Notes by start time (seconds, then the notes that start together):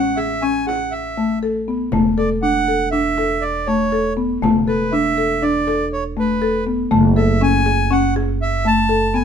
Already playing: A1 F#5
0.17 G#4 E5, frame drum
0.42 C#4 G#5
0.67 G#4 F#5, frame drum
0.92 E5, frame drum
1.18 A3, frame drum
1.43 A4
1.68 B3
1.92 E1 A3, frame drum
2.18 A4 D5
2.42 D4 F#5
2.68 A4
2.92 D4 E5
3.18 A4, frame drum
3.41 D5
3.66 A3 C#5
3.92 A4
4.17 B3, frame drum
4.42 E1 A3, frame drum
4.68 A4 B4, frame drum
4.92 D4 E5
5.18 A4
5.43 D4 D5
5.67 A4, frame drum
5.93 C#5
6.17 A3 B4
6.42 A4
6.67 B3, frame drum
6.91 F#1 A3, frame drum
7.16 A4 E5, frame drum
7.41 C#4 G#5
7.66 G#4
7.91 C#4 F#5
8.16 G#4, frame drum
8.42 E5
8.65 A3 A5
8.89 A4
9.14 B3 G#5, frame drum